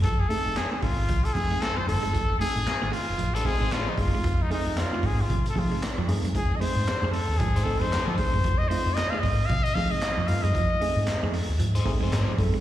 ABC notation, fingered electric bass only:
X:1
M:4/4
L:1/16
Q:"Swing 16ths" 1/4=114
K:Fmix
V:1 name="Fingered electric bass" clef=bass
F,,,2 z F,,, z2 ^G,,,2 C,, z F,, z2 F,, =G,,, _G,,, | z F,,, z A,,, z ^G,,, z F,,, A,,,2 z G,,, A,,, z _G,,, z | F,,2 z F,, z2 ^G,,2 C, z F, z2 F,, =G,, _G,, | z F,, z ^G,, z F,, z E,, G,,2 z F,, z F, z _G,, |
F,,2 z F,, z2 ^G,,2 C, z F, z2 F,, =G,, _G,, | F,,2 z ^G,, z F,, z E,, G,,2 z F,, G,, z _G,, z |]